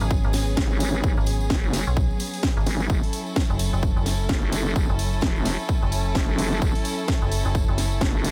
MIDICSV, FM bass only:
0, 0, Header, 1, 2, 480
1, 0, Start_track
1, 0, Tempo, 465116
1, 1070, Time_signature, 4, 2, 24, 8
1, 8578, End_track
2, 0, Start_track
2, 0, Title_t, "FM bass"
2, 0, Program_c, 0, 39
2, 11, Note_on_c, 0, 32, 99
2, 228, Note_off_c, 0, 32, 0
2, 251, Note_on_c, 0, 32, 102
2, 575, Note_off_c, 0, 32, 0
2, 1211, Note_on_c, 0, 32, 101
2, 1535, Note_off_c, 0, 32, 0
2, 1931, Note_on_c, 0, 35, 95
2, 2148, Note_off_c, 0, 35, 0
2, 2651, Note_on_c, 0, 32, 96
2, 2734, Note_off_c, 0, 32, 0
2, 3611, Note_on_c, 0, 30, 96
2, 3828, Note_off_c, 0, 30, 0
2, 3850, Note_on_c, 0, 30, 96
2, 4068, Note_off_c, 0, 30, 0
2, 4090, Note_on_c, 0, 30, 100
2, 4414, Note_off_c, 0, 30, 0
2, 5051, Note_on_c, 0, 30, 100
2, 5374, Note_off_c, 0, 30, 0
2, 6011, Note_on_c, 0, 30, 99
2, 6335, Note_off_c, 0, 30, 0
2, 7450, Note_on_c, 0, 30, 98
2, 7668, Note_off_c, 0, 30, 0
2, 7691, Note_on_c, 0, 30, 100
2, 7908, Note_off_c, 0, 30, 0
2, 7931, Note_on_c, 0, 30, 103
2, 8254, Note_off_c, 0, 30, 0
2, 8578, End_track
0, 0, End_of_file